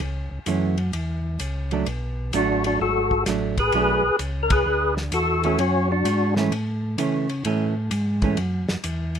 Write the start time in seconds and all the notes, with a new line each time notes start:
0.00 C#2
0.31 C#2
0.46 F#2 E3 A3 C#4, hi-hat pedal, ride
0.78 ride
0.93 E2, ride
1.39 C#2, hi-hat pedal, ride
1.71 F#3 A3 D4, ride
1.86 B1, ride
2.33 A1 F#3 A3 D4 F#4, hi-hat pedal, ride
2.64 D4 F#4, ride
2.80 G#1 F#4 A4
3.11 kick
3.26 A1 F#3 A3 D4, snare, hi-hat pedal, ride
3.58 G#4 B4, kick, ride
3.72 B1 F#3 A3 D4, ride
4.03 B1
4.19 C#2, hi-hat pedal, ride
4.43 A#4
4.50 G#4 B4, kick, ride
4.66 D2
4.97 snare
5.12 E2 F#4 A4, hi-hat pedal, ride
5.43 E3 A3 C#4 F#4 A4, ride
5.58 F#2 C#4 F#4, ride
5.92 D4 F#4
6.04 G#2, hi-hat pedal, ride
6.36 E3 A3 C#4, snare
6.51 A2, ride
6.98 C#3 E3 A3 C#4, hi-hat pedal, ride
7.29 ride
7.45 A2 E3 A3 C#4, ride
7.91 G#2, hi-hat pedal, ride
8.22 E3 A3 C#4, kick, ride
8.37 F#2, ride
8.69 F#2, snare
8.84 E2, hi-hat pedal, ride
9.15 ride